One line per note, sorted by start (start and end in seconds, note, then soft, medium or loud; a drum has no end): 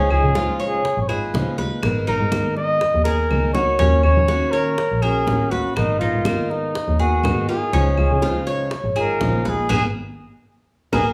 0.00 0.10 G#3 medium
0.00 0.34 C#4 medium
0.00 0.10 D#4 medium
0.00 0.10 F4 medium
0.10 0.22 C#2 medium
0.10 0.35 G#3 soft
0.10 0.35 D#4 soft
0.10 0.35 F4 soft
0.10 0.57 G#4 medium
0.10 high conga soft
0.10 claves medium
0.23 0.93 C#3 medium
0.35 0.83 C#3 medium
0.35 0.84 F3 medium
0.35 0.84 G#3 medium
0.35 0.84 D#4 medium
0.35 0.59 F4 medium
0.35 0.84 F4 medium
0.35 high bongo medium
0.35 high conga medium
0.60 1.07 C#5 medium
0.60 high bongo soft
0.60 high conga soft
0.68 1.00 G#4 medium
0.85 muted steel-string acoustic guitar stroke medium
0.85 high bongo medium
0.85 high conga soft
0.97 1.32 G#1 medium
1.02 1.10 C#5 medium
1.08 1.34 G#3 soft
1.08 1.33 D#4 soft
1.08 1.33 F4 soft
1.08 1.57 G#4 medium
1.08 1.58 B4 medium
1.08 high bongo soft
1.08 high conga soft
1.08 claves medium
1.34 1.57 C#3 medium
1.34 1.81 C#3 medium
1.34 1.57 F3 medium
1.34 1.58 G#3 medium
1.34 1.58 D#4 medium
1.34 1.57 F4 medium
1.34 high bongo medium
1.34 low bongo medium
1.34 high conga medium
1.58 1.83 G#3 soft
1.58 1.82 D#4 soft
1.58 1.82 F4 medium
1.58 2.06 B4 medium
1.58 high bongo soft
1.58 high conga medium
1.83 2.06 G#1 loud
1.83 2.07 D#3 medium
1.83 2.07 G#3 medium
1.83 2.07 B3 medium
1.83 2.07 D#4 medium
1.83 2.07 A#4 medium
1.83 high bongo medium
1.83 high conga soft
1.83 claves medium
2.07 2.19 G#1 medium
2.07 2.32 B3 soft
2.07 2.55 D#4 medium
2.07 2.32 D#4 soft
2.07 2.53 A#4 loud
2.07 2.32 A#4 soft
2.07 high bongo soft
2.07 high conga soft
2.20 2.90 G#2 medium
2.32 2.81 D#3 medium
2.32 2.81 G#3 medium
2.32 2.81 B3 medium
2.32 2.81 D#4 medium
2.32 2.82 A#4 medium
2.32 high bongo medium
2.32 high conga loud
2.32 claves medium
2.56 3.02 D#5 loud
2.56 high bongo soft
2.56 high conga soft
2.81 muted steel-string acoustic guitar stroke medium
2.81 high bongo medium
2.81 high conga soft
2.94 3.29 D#2 medium
3.04 3.30 B3 soft
3.04 3.30 D#4 soft
3.04 3.54 G#4 medium
3.04 3.50 A#4 medium
3.04 3.29 A#4 soft
3.04 high bongo medium
3.04 high conga soft
3.31 3.77 C#2 medium
3.31 3.54 D#3 medium
3.31 3.55 G#3 medium
3.31 3.55 B3 medium
3.31 3.55 D#4 medium
3.31 3.54 A#4 medium
3.31 high conga medium
3.31 claves medium
3.53 3.80 B3 soft
3.53 3.79 D#4 soft
3.53 3.79 F#4 medium
3.53 3.79 A#4 soft
3.53 4.00 C#5 loud
3.53 low bongo loud
3.53 high conga medium
3.79 4.03 D#2 medium
3.79 4.04 D#3 medium
3.79 4.04 A#3 medium
3.79 4.27 C#4 medium
3.79 4.04 C#4 medium
3.79 4.03 F#4 medium
3.79 high bongo medium
3.79 high conga soft
4.03 4.16 D#2 medium
4.03 4.29 A#3 soft
4.03 4.29 C#4 soft
4.03 4.28 F#4 soft
4.03 4.53 C#5 loud
4.03 high conga soft
4.03 claves medium
4.17 4.87 D#3 medium
4.28 4.77 D#3 medium
4.28 4.77 A#3 medium
4.28 4.78 C#4 medium
4.28 4.52 F#4 medium
4.28 4.78 F#4 medium
4.28 high bongo medium
4.28 high conga medium
4.51 5.04 A#4 loud
4.51 5.01 C#5 medium
4.51 high bongo soft
4.51 high conga soft
4.78 muted steel-string acoustic guitar stroke medium
4.78 high bongo medium
4.78 high conga soft
4.91 5.26 A#1 medium
5.02 5.27 A#3 soft
5.02 5.27 C#4 soft
5.02 5.27 F#4 soft
5.02 5.52 G#4 medium
5.02 5.50 A#4 medium
5.02 high bongo soft
5.02 high conga soft
5.02 claves medium
5.27 5.74 A1 medium
5.27 5.51 D#3 medium
5.27 5.51 A#3 medium
5.27 5.51 C#4 medium
5.27 5.50 F#4 medium
5.27 high bongo medium
5.27 low bongo medium
5.27 high conga medium
5.51 5.76 A#3 soft
5.51 5.76 C#4 soft
5.51 5.75 F#4 medium
5.51 5.75 F#4 soft
5.51 5.99 B4 medium
5.51 high bongo soft
5.51 high conga medium
5.75 6.00 G#1 loud
5.75 6.00 D#3 medium
5.75 6.00 G#3 medium
5.75 6.00 B3 medium
5.75 5.98 D#4 medium
5.75 6.01 D#4 medium
5.75 6.00 A#4 medium
5.75 high bongo medium
5.75 high conga soft
5.75 claves medium
5.99 6.13 G#1 medium
5.99 6.26 B3 soft
5.99 6.49 D#4 medium
5.99 6.25 D#4 soft
5.99 6.52 F4 medium
5.99 6.25 A#4 soft
5.99 high bongo soft
5.99 high conga soft
6.15 6.84 G#2 medium
6.25 6.75 D#3 medium
6.25 6.75 G#3 medium
6.25 6.75 B3 medium
6.25 6.75 D#4 medium
6.25 6.75 A#4 medium
6.25 high bongo medium
6.25 high conga medium
6.25 claves medium
6.50 7.01 D#4 medium
6.50 high bongo soft
6.50 high conga soft
6.75 muted steel-string acoustic guitar stroke medium
6.75 high bongo medium
6.75 high conga soft
6.88 7.22 D#2 medium
6.99 7.24 B3 soft
6.99 7.24 D#4 soft
6.99 7.48 F#4 loud
6.99 7.47 G#4 medium
6.99 7.24 A#4 soft
6.99 high bongo soft
6.99 high conga soft
7.24 7.71 G#2 medium
7.24 7.49 D#3 medium
7.24 7.49 G#3 medium
7.24 7.49 B3 medium
7.24 7.49 D#4 medium
7.24 7.48 A#4 medium
7.24 high bongo medium
7.24 low bongo medium
7.24 high conga medium
7.24 claves medium
7.49 7.74 B3 soft
7.49 7.73 D#4 soft
7.49 7.73 F4 medium
7.49 7.95 G#4 medium
7.49 7.73 A#4 medium
7.73 7.97 C#2 loud
7.73 7.97 C#3 medium
7.73 7.97 F3 medium
7.73 7.97 G#3 medium
7.73 8.21 C#4 medium
7.73 7.98 D#4 medium
7.73 7.97 F4 medium
7.73 high bongo medium
7.73 high conga soft
7.97 8.09 C#2 medium
7.97 8.23 G#3 soft
7.97 8.22 D#4 soft
7.97 8.22 F4 soft
7.97 8.44 G#4 medium
7.97 high conga soft
7.97 claves medium
8.10 8.80 C#3 medium
8.22 8.71 C#3 medium
8.22 8.72 F3 medium
8.22 8.72 G#3 medium
8.22 8.72 D#4 medium
8.22 8.46 F4 medium
8.22 8.72 F4 medium
8.22 high bongo medium
8.22 high conga medium
8.47 8.95 C#5 medium
8.47 high bongo soft
8.47 high conga soft
8.71 muted steel-string acoustic guitar stroke medium
8.71 high bongo medium
8.71 high conga soft
8.83 9.19 G#1 medium
8.96 9.21 G#3 soft
8.96 9.21 D#4 soft
8.96 9.20 F4 soft
8.96 9.44 G#4 medium
8.96 high bongo soft
8.96 high conga soft
8.96 claves medium
9.00 9.51 A#4 loud
9.19 9.67 A#1 medium
9.19 9.45 C#3 medium
9.19 9.45 F3 medium
9.19 9.45 G#3 medium
9.19 9.45 D#4 medium
9.19 9.44 F4 medium
9.19 high bongo medium
9.19 low bongo medium
9.19 high conga medium
9.45 9.70 G#3 soft
9.45 9.70 D#4 soft
9.45 9.69 F4 soft
9.45 9.68 B4 medium
9.45 high bongo soft
9.45 high conga medium
9.49 9.71 G#4 medium
9.69 9.88 G#1 loud
9.69 9.86 A#3 loud
9.69 9.87 B3 medium
9.69 9.86 D#4 loud
9.69 9.85 G#4 loud
9.69 9.83 G#4 loud
9.69 9.85 A#4 medium
9.69 9.85 B4 loud
9.69 low bongo loud
9.69 high conga loud
9.69 claves medium
10.92 11.12 G#1 loud
10.92 11.09 A#3 medium
10.92 11.09 B3 medium
10.92 11.09 D#4 medium
10.92 11.09 G#4 medium
10.92 11.06 G#4 medium
10.92 11.09 A#4 medium
10.92 11.09 B4 medium
10.92 low bongo loud
10.92 high conga loud
10.92 claves medium